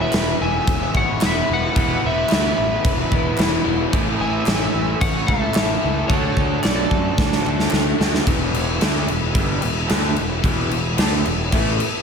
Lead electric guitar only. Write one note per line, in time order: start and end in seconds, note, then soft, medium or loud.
0.00 0.37 B4 medium
0.42 0.91 E5 loud
0.97 1.21 C#5 medium
1.24 1.48 B4 medium
1.51 2.01 B4 medium
2.06 2.30 B4 medium
2.32 3.63 B4 medium
4.20 4.97 E5 medium
5.01 5.26 C#5 loud
5.27 6.05 A4 medium
6.08 6.59 A4 medium
6.63 7.68 A4 medium